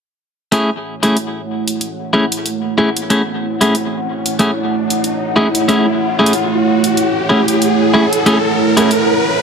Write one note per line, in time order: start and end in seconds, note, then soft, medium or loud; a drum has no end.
0.52 0.69 A3 medium
0.52 9.42 A3 medium
0.52 0.69 C#4 medium
0.52 9.42 E4 medium
0.52 0.69 E4 medium
0.52 0.69 G#4 medium
0.52 9.42 C#5 medium
0.52 9.42 F#5 medium
0.52 closed hi-hat medium
0.52 riser medium
1.03 1.16 A3 medium
1.03 1.16 C#4 medium
1.03 1.16 E4 medium
1.03 1.16 G#4 medium
1.03 closed hi-hat medium
1.17 closed hi-hat soft
1.68 closed hi-hat medium
1.81 closed hi-hat medium
2.13 2.24 A3 medium
2.13 2.24 C#4 medium
2.13 2.24 E4 medium
2.13 2.24 G#4 medium
2.32 closed hi-hat medium
2.46 closed hi-hat medium
2.78 2.89 A3 medium
2.78 2.89 C#4 medium
2.78 2.89 E4 medium
2.78 2.89 G#4 medium
2.97 closed hi-hat medium
3.10 3.21 A3 loud
3.10 3.21 C#4 medium
3.10 3.21 E4 medium
3.10 3.21 G#4 medium
3.10 closed hi-hat medium
3.61 3.74 A3 medium
3.61 3.74 C#4 medium
3.61 3.74 E4 medium
3.61 3.74 G#4 medium
3.61 closed hi-hat medium
3.75 closed hi-hat medium
4.26 closed hi-hat medium
4.39 4.50 A3 medium
4.39 4.50 C#4 medium
4.39 4.50 E4 medium
4.39 4.50 G#4 medium
4.39 closed hi-hat medium
4.90 closed hi-hat medium
5.04 closed hi-hat medium
5.36 5.47 A3 medium
5.36 5.47 C#4 medium
5.36 5.47 E4 medium
5.36 5.47 G#4 medium
5.55 closed hi-hat medium
5.68 5.86 A3 medium
5.68 5.86 C#4 medium
5.68 5.86 E4 medium
5.68 5.86 G#4 loud
5.68 closed hi-hat medium
6.19 6.32 A3 medium
6.19 6.32 C#4 medium
6.19 6.32 E4 medium
6.19 6.32 G#4 medium
6.26 closed hi-hat medium
6.33 closed hi-hat medium
6.84 closed hi-hat medium
6.97 closed hi-hat medium
7.29 7.41 A3 medium
7.29 7.41 C#4 medium
7.29 7.40 E4 medium
7.29 7.40 G#4 medium
7.48 closed hi-hat medium
7.62 closed hi-hat medium
7.94 8.05 A3 medium
7.94 8.05 C#4 medium
7.94 8.05 E4 medium
7.94 8.05 G#4 medium
8.13 closed hi-hat medium
8.26 8.37 A3 medium
8.26 8.37 C#4 medium
8.26 8.37 E4 medium
8.26 8.37 G#4 loud
8.26 closed hi-hat soft
8.77 8.90 A3 medium
8.77 8.90 C#4 medium
8.77 8.90 E4 medium
8.77 8.90 G#4 medium
8.77 closed hi-hat medium
8.91 closed hi-hat medium